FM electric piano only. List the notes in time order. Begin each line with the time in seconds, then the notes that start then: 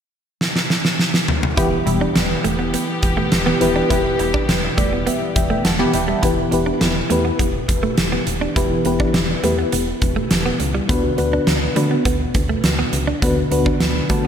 1.57 E3 B3 E4 G4 B4
3.60 B3 E4 G4 B4
3.90 E3 B3 E4 G4 B4
4.78 D5
5.07 E5
5.36 E5 G5
5.50 E5 G5
5.65 F#5 A5
5.80 G5 B5
5.94 E5 G5 B5
6.09 E5
6.24 E3 B3 E4 G4 B4
6.52 B3 E4 G4 B4
7.11 B3 E4 G4 B4
8.56 E3 B3 E4 G4 B4
8.86 B3 E4 G4 B4
9.44 B3 E4 G4 B4
10.88 D3 B3 D4 F#4 B4
11.17 B3 D4 F#4 B4
11.75 B3 D4 F#4 B4
13.22 D3 B3 D4 F#4 B4
13.51 B3 D4 F#4 B4
14.09 B3 D4 F#4 B4 A5